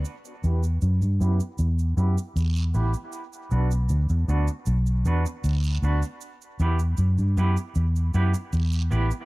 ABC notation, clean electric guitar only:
X:1
M:4/4
L:1/16
Q:1/4=78
K:Em
V:1 name="Clean electric guitar"
z2 [B,EGB] z3 [B,EGB] z3 [B,EGB] z3 [B,EGB] z | z2 [B,DFB] z3 [B,DFB] z3 [B,DFB] z3 [B,DFB] z | z2 [B,EGB] z3 [B,EGB] z3 [B,EGB] z3 [B,EGB] z |]